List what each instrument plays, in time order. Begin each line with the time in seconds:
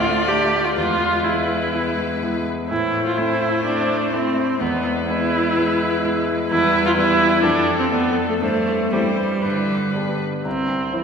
Already playing: grand piano D2, cello A3, viola F4, violin D5
0.28 grand piano A3 D4 A4, viola G4
0.64 viola F4
0.76 grand piano E2, cello G#3, viola F4, violin B4
1.24 grand piano G#3 B3 E4, viola E4
1.74 grand piano G#3 B3 E4
2.23 grand piano G#3 B3 E4
2.70 grand piano A2, cello A3, viola E4, violin C5
3.06 viola F4
3.18 grand piano A3 C4 E4, viola E4
3.66 grand piano A3 C4 E4, viola D4
4.13 grand piano A3 C4 E4, viola C4
4.60 grand piano E2, cello G#3, viola B3, violin B4
5.10 grand piano G#3 B3 E4, viola E4
5.58 grand piano G#3 B3 E4
6.04 grand piano G#3 B3 E4
6.51 grand piano E2, cello G3, viola E4, violin B4
6.86 viola F4
6.97 cello G3, grand piano G3 B3 E4, viola E4, violin B4
7.43 grand piano F2, cello F3, viola D4, violin A4
7.79 viola C4
7.91 grand piano A3 D4 A4, viola B3
8.29 viola A3
8.41 grand piano G2, cello E3, viola A3, violin C5
8.93 cello E3, viola G3, grand piano C4 E4 G4, violin C5
9.44 grand piano G2, cello D3, violin B4
9.94 grand piano B3 D4 G4
10.45 grand piano C2, viola C4
10.68 grand piano C4
10.93 cello E3, grand piano E4, violin C5